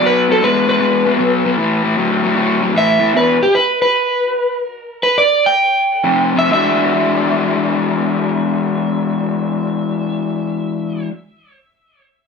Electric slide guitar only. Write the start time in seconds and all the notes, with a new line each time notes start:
0.06 B4
0.32 A4
0.44 B4
0.69 B4
2.78 E5
3.17 B4
3.43 G4
3.55 B4
3.82 B4
5.03 B4
5.18 D5
5.46 G5
6.39 E5
6.53 E5